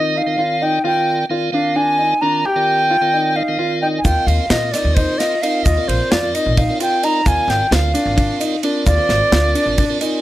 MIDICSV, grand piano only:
0, 0, Header, 1, 2, 480
1, 0, Start_track
1, 0, Tempo, 458716
1, 883, Time_signature, 7, 3, 24, 8
1, 10689, End_track
2, 0, Start_track
2, 0, Title_t, "Grand piano"
2, 0, Program_c, 0, 0
2, 164, Note_on_c, 0, 63, 75
2, 329, Note_off_c, 0, 63, 0
2, 404, Note_on_c, 0, 65, 71
2, 569, Note_off_c, 0, 65, 0
2, 645, Note_on_c, 0, 63, 81
2, 810, Note_off_c, 0, 63, 0
2, 881, Note_on_c, 0, 65, 93
2, 1212, Note_off_c, 0, 65, 0
2, 1366, Note_on_c, 0, 65, 81
2, 1530, Note_off_c, 0, 65, 0
2, 1608, Note_on_c, 0, 62, 77
2, 1772, Note_off_c, 0, 62, 0
2, 1838, Note_on_c, 0, 62, 85
2, 2005, Note_off_c, 0, 62, 0
2, 2078, Note_on_c, 0, 63, 70
2, 2245, Note_off_c, 0, 63, 0
2, 2317, Note_on_c, 0, 62, 78
2, 2484, Note_off_c, 0, 62, 0
2, 2567, Note_on_c, 0, 67, 92
2, 2896, Note_off_c, 0, 67, 0
2, 3039, Note_on_c, 0, 65, 81
2, 3205, Note_off_c, 0, 65, 0
2, 3281, Note_on_c, 0, 63, 75
2, 3446, Note_off_c, 0, 63, 0
2, 3516, Note_on_c, 0, 63, 82
2, 3683, Note_off_c, 0, 63, 0
2, 3755, Note_on_c, 0, 65, 74
2, 3923, Note_off_c, 0, 65, 0
2, 4002, Note_on_c, 0, 63, 80
2, 4167, Note_off_c, 0, 63, 0
2, 4236, Note_on_c, 0, 65, 87
2, 4568, Note_off_c, 0, 65, 0
2, 4720, Note_on_c, 0, 65, 82
2, 4886, Note_off_c, 0, 65, 0
2, 4961, Note_on_c, 0, 63, 75
2, 5126, Note_off_c, 0, 63, 0
2, 5201, Note_on_c, 0, 63, 79
2, 5366, Note_off_c, 0, 63, 0
2, 5437, Note_on_c, 0, 65, 71
2, 5603, Note_off_c, 0, 65, 0
2, 5679, Note_on_c, 0, 63, 75
2, 5844, Note_off_c, 0, 63, 0
2, 5921, Note_on_c, 0, 65, 91
2, 6251, Note_off_c, 0, 65, 0
2, 6395, Note_on_c, 0, 65, 87
2, 6562, Note_off_c, 0, 65, 0
2, 6641, Note_on_c, 0, 63, 80
2, 6806, Note_off_c, 0, 63, 0
2, 6875, Note_on_c, 0, 63, 82
2, 7042, Note_off_c, 0, 63, 0
2, 7117, Note_on_c, 0, 65, 70
2, 7283, Note_off_c, 0, 65, 0
2, 7358, Note_on_c, 0, 63, 82
2, 7524, Note_off_c, 0, 63, 0
2, 7598, Note_on_c, 0, 65, 94
2, 7929, Note_off_c, 0, 65, 0
2, 8073, Note_on_c, 0, 65, 82
2, 8240, Note_off_c, 0, 65, 0
2, 8306, Note_on_c, 0, 62, 85
2, 8476, Note_off_c, 0, 62, 0
2, 8540, Note_on_c, 0, 62, 85
2, 8712, Note_off_c, 0, 62, 0
2, 8792, Note_on_c, 0, 63, 77
2, 8960, Note_off_c, 0, 63, 0
2, 9036, Note_on_c, 0, 62, 85
2, 9202, Note_off_c, 0, 62, 0
2, 9274, Note_on_c, 0, 65, 93
2, 9606, Note_off_c, 0, 65, 0
2, 9751, Note_on_c, 0, 65, 85
2, 9919, Note_off_c, 0, 65, 0
2, 9989, Note_on_c, 0, 62, 80
2, 10158, Note_off_c, 0, 62, 0
2, 10232, Note_on_c, 0, 62, 81
2, 10400, Note_off_c, 0, 62, 0
2, 10474, Note_on_c, 0, 63, 76
2, 10641, Note_off_c, 0, 63, 0
2, 10689, End_track
0, 0, End_of_file